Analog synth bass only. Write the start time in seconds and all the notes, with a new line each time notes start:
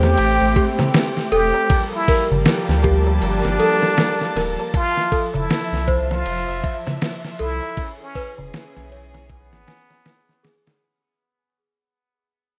Already playing: E2
0.19 A1
0.41 A1
1.32 E1
2.31 G1
2.69 D2
3.22 G1
3.45 G1
4.36 D1
5.35 F1
5.72 C2
6.26 F1
6.48 F1
7.40 C2
8.38 E1
8.77 B1
9.52 G#1